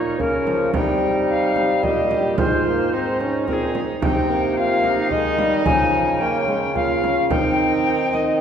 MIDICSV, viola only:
0, 0, Header, 1, 2, 480
1, 0, Start_track
1, 0, Tempo, 547945
1, 655, Time_signature, 3, 2, 24, 8
1, 7365, End_track
2, 0, Start_track
2, 0, Title_t, "Viola"
2, 0, Program_c, 0, 41
2, 0, Note_on_c, 0, 63, 57
2, 175, Note_on_c, 0, 61, 57
2, 188, Note_off_c, 0, 63, 0
2, 654, Note_on_c, 0, 63, 51
2, 667, Note_off_c, 0, 61, 0
2, 1600, Note_off_c, 0, 63, 0
2, 1605, Note_on_c, 0, 67, 53
2, 1835, Note_off_c, 0, 67, 0
2, 1840, Note_on_c, 0, 67, 59
2, 2080, Note_on_c, 0, 65, 58
2, 2093, Note_off_c, 0, 67, 0
2, 2569, Note_on_c, 0, 63, 50
2, 2582, Note_off_c, 0, 65, 0
2, 3041, Note_off_c, 0, 63, 0
2, 3046, Note_on_c, 0, 63, 56
2, 3515, Note_off_c, 0, 63, 0
2, 3524, Note_on_c, 0, 63, 60
2, 4001, Note_on_c, 0, 65, 57
2, 4015, Note_off_c, 0, 63, 0
2, 4237, Note_on_c, 0, 63, 70
2, 4250, Note_off_c, 0, 65, 0
2, 5436, Note_on_c, 0, 61, 56
2, 5449, Note_off_c, 0, 63, 0
2, 5902, Note_off_c, 0, 61, 0
2, 5907, Note_on_c, 0, 65, 57
2, 6399, Note_on_c, 0, 63, 65
2, 6412, Note_off_c, 0, 65, 0
2, 7365, Note_off_c, 0, 63, 0
2, 7365, End_track
0, 0, End_of_file